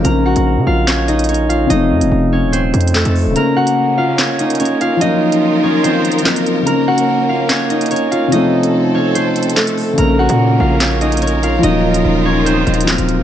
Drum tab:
HH |x-----------------x-----------------------------x-----------x-----x--x--x--x--------x-----------|x-----------------x-----------------------------x-----------x---x---x---------x-----o-----------|x-----------------x-----------------------------x-----------x-----x--x--x--x--------x-----------|x-----------------x-----------------------------x-----------x---x---x---------x-----x-----------|
CP |------------------------------------------------x-----------------------------------------------|------------------------------------------------------------------------x-----------------------|------------------------------------------------x-----------------------------------------------|------------------------------------------------------------------------x-----------------------|
SD |------------------------------------------------o-----------------------------------------------|------------------------------------------------------------------------o-----------------------|------------------------------------------------o-----------------------------------------------|------------------------------------------------------------------------o-----------------------|

HH |x-----------------x-----------------------------x-----------x-----x--x--x--x--------x-----------|x-----------------x-----------------------------x-----------x---x---x---------x-----o-----------|x-----------------x-----------------------------x-----------x-----x--x--x--x--------x-----------|x-----------------x-----------------------------x-----------x---x---x---------x-----x-----------|
CP |------------------------------------------------x-----------------------------------------------|------------------------------------------------------------------------x-----------------------|------------------------------------------------x-----------------------------------------------|------------------------------------------------------------------------x-----------------------|
SD |------------------------------------------------o-----------------------------------------------|------------------------------------------------------------------------o-----------------------|------------------------------------------------o-----------------------------------------------|------------------------------------------------------------------------o-----------------------|